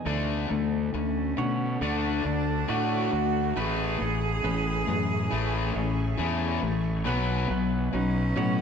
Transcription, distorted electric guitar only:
0.06 D3 A3 D4
0.50 D3 A3
0.94 D3 A3
1.37 D3 A3
1.81 D3 A3 D4
2.24 D3 A3
2.68 D3 A3 D4
3.12 D3 A3
3.56 A2 E3 A3
4.00 A2 E3
4.44 A2 E3
4.87 A2 E3
5.31 A2 E3 A3
5.75 A2 E3
6.17 A2 E3 A3
6.61 A2 E3
7.04 B2 F#3 B3
7.49 B2 F#3
7.93 B2 F#3
8.36 B2 F#3

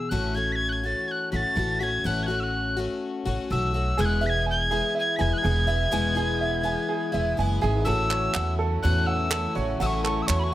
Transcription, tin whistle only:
Already playing: E6
0.09 F#6
0.35 G#6
0.52 G#6 B6
0.69 F#6 G#6
0.85 A6
1.08 F#6 G#6
1.32 A6 B6
1.80 G#6 B6
2.06 F#6
2.23 F#6 G#6
2.40 E6 F#6
3.51 E6
4.00 G#6
4.05 F#6
4.26 G#6 B6
4.50 G#6
4.99 G#6
5.16 B6
5.21 G#6
5.33 F#6
5.38 G#6
7.85 E6
8.82 F#6
9.06 E6
9.82 E6
9.86 C#6
10.05 C#6
10.22 E6
10.27 C#6
10.39 B5
10.44 C#6

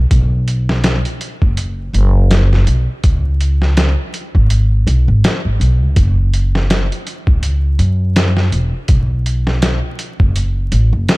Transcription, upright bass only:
0.11 B1
1.42 F#1
1.93 F#1
2.67 B1
3.04 C#2
4.35 G#1
4.87 B1
5.08 G#1
5.45 G#1
5.60 B1
5.81 C#2
5.96 F#1
7.27 C#2
7.79 F#2
8.52 E1
8.89 B1
10.20 F#1
10.72 A1
10.93 F#1

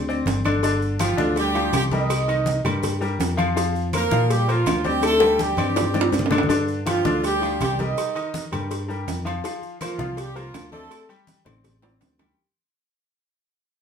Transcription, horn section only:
1.00 F3 F4
1.38 G3 G4
1.74 G3 G4
1.92 D#4 D#5
3.95 A#3 A#4
4.30 G3 G4
4.50 F3 F4
4.85 G3 G4
5.04 A3 A4
5.40 G3 G4
6.88 F3 F4
7.25 G3 G4
7.62 G3 G4
7.80 D#4 D#5
9.81 F3 F4
10.19 G3 G4
10.36 F3 F4
10.72 A3 A4

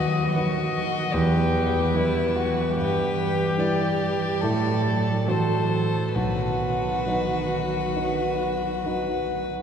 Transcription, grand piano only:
Already playing: D#2
0.36 F#3 F#4 B4
1.14 E2
1.95 G3 E4 B4
2.77 G2
3.58 G3 E4 B4
4.43 A2
5.28 F#3 F#4 C5
6.15 B1
7.06 F#3 D#4 B4
7.96 F#3 D#4 B4
8.86 F#3 D#4 B4

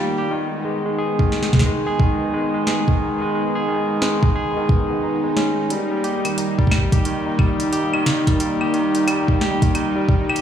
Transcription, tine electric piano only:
Already playing: D#3 G3 G4
0.18 G4
0.31 D#3
0.65 G#3
0.86 G#3
0.98 G#4
1.19 D#3
1.53 G#3
1.66 G#3
1.87 G#4
2.00 D#3
2.33 G#3
2.54 G#3
2.67 G#4
2.88 D#3
3.22 G#3
3.34 G#3
3.55 G#4
3.68 D#3
4.02 G#3
4.23 G#3
4.36 G#4
4.56 D#3
4.90 B3
5.03 D#4
5.24 G#3
5.37 C#4
5.70 G3
5.91 G3
6.04 G4
6.25 D#3
6.38 D#4
6.59 G3
6.71 G3
6.92 G4
7.05 D#3
7.26 D#4
7.39 G3
7.60 G3
7.73 G4
7.94 D#3
8.06 D#4
8.27 G3
8.40 G3
8.61 G4
8.74 D#3
8.95 D#4
9.07 G3
9.28 G3
9.41 G4
9.62 D#3
9.75 D#4
9.96 G3
10.09 G3
10.29 G4

